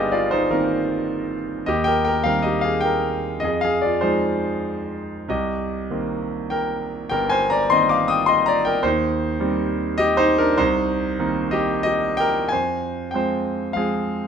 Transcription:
Already playing: G1 C2 D#3 A#3 C4 D#4 F4 G4 G#4 C5 D5 D#5 F5
0.12 F4 D5
0.31 D#4 C5
0.50 D#3 A#3 C4 D#4 A#4
1.66 D#2 G4 D#5
1.84 A#4 G5
2.05 A#4 G5
2.24 D#3 G3 C4 A#4 F5
2.42 G4 D#5
2.61 G#4 F5
2.81 G5
2.85 A#4
3.40 F2 D#5
3.44 G#4
3.61 G#4 F5
3.82 F4 D5
4.01 F3 G#3 D#4 C5
5.29 C2 G4 D#5
5.91 D#3 A#3 C4
6.50 A#4 G5
7.09 G1 A#4 G5
7.30 C5 G#5
7.50 D5 A#5
7.70 D#3 A#3 C4 D#5 C6
7.89 F5 D6
8.08 G5 D#6
8.26 D#5 C6
8.46 D5 A#5
8.65 A#4 G5
8.83 D#2 D#4 C5
9.40 D#3 G3 C4
9.98 G4 D#5
10.17 D#4 C5
10.38 D4 A#4
10.58 C2 D#4 C5
11.19 D#3 A#3 C4 D#4
11.51 G4 D#5
11.83 G4 D#5
12.17 A#4 G5
12.49 F2 C5 G#5
13.11 F3 G#3 C4 G5
13.15 C5
13.73 F3 G#3 C4 G#4 F5

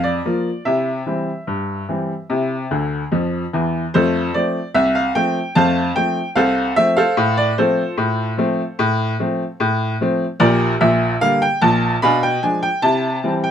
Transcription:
Already playing: F2
0.04 D5
0.25 F3 A#3 F4
0.65 C3 E4 E5
1.06 E3 G3 C4
1.47 G2
1.89 E3 G3 C4
2.30 C3 E4
2.71 D2 D3
3.12 F2 F3
3.53 E2 E3
3.94 F2 A3 F4 A4 C5
4.34 F3 A3 C4 D5
4.74 C2 E5
4.95 F5
5.15 F3 A3 C4 G5
5.55 F2 A3 C5 F5 A5
5.96 F3 A3 C4 G5
6.36 C2 A4 C5 F5
6.76 F3 A3 C4 E5
6.97 A4 C5 F5
7.17 A2
7.37 D5
7.58 F3 A3 C4 F4 A4 C5
7.97 A2
8.38 F3 A3 C4
8.79 A2
9.20 F3 A3 C4
9.60 A2
10.01 F3 A3 C4
10.40 A#1 A#2 G4 A#4 D5
10.81 A#1 A#2 E5
11.21 D3 G3 A#3 F5
11.42 G5
11.61 A#1 A#2 A5
12.02 B2 D4 F5 G#5 B5
12.23 G5
12.43 F3 G#3 D4 G#5
12.63 G5
12.82 C3 E4 A5
13.24 E3 G3 C4
13.44 G5

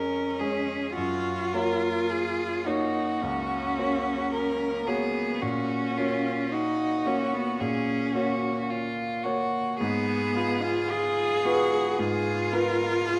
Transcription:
Already playing: F2 G#3 C#4 G#4 A#4 C#5
0.39 G#3 G#4 C#5
0.94 F#2 F4 F#4
1.54 A#3 F#4 A#4 C#5
2.10 G#4
2.66 A#3 D#4 F#4 C#5
3.21 C#2 C#4
3.78 A#3 F#4 C#5
4.33 A#4
4.86 A#3 B3 F#4 G#4 C#5
5.42 A#2 C#4 F#4
5.98 A#3 F4 F#4 C#5
6.52 D#4 F#4
7.06 A#3 C#4 F#4 C#5
7.34 B3
7.60 A#2 C#4 G#4
8.15 A#3 F#4 C#5
8.70 F4
9.24 A#3 F#4 C#5
9.78 G#2 B3 G#4
10.36 B3 F4 B4
10.62 F4
10.89 F4 G#4
11.45 B3 F4 F#4 B4
11.98 G#2 F4 G#4
12.52 B3 F4 A#4 B4
13.06 G#4

